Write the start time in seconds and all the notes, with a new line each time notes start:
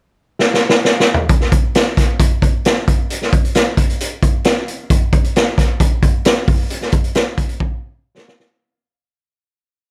0.39 snare
0.54 snare
0.69 snare
0.85 snare
1.00 snare
1.14 floor tom
1.29 kick, closed hi-hat
1.41 snare
1.52 kick, closed hi-hat
1.75 snare, closed hi-hat
1.97 kick, snare, closed hi-hat
2.20 kick, closed hi-hat
2.42 kick, closed hi-hat
2.65 snare, closed hi-hat
2.88 kick, closed hi-hat
3.10 closed hi-hat
3.22 snare
3.33 kick, closed hi-hat
3.45 closed hi-hat
3.55 snare, closed hi-hat
3.77 kick, closed hi-hat
3.90 closed hi-hat
4.00 closed hi-hat
4.23 kick, closed hi-hat
4.44 snare, closed hi-hat
4.68 closed hi-hat
4.90 kick, closed hi-hat
5.13 kick, closed hi-hat
5.24 closed hi-hat
5.36 snare, closed hi-hat
5.58 kick, snare, closed hi-hat
5.80 kick, closed hi-hat
6.03 kick, closed hi-hat
6.25 snare, closed hi-hat
6.48 kick, open hi-hat
6.70 closed hi-hat
6.81 snare
6.92 kick, closed hi-hat
7.04 closed hi-hat
7.15 snare, closed hi-hat
7.38 kick, closed hi-hat
7.49 closed hi-hat
7.60 kick
8.17 snare
8.28 snare
8.40 snare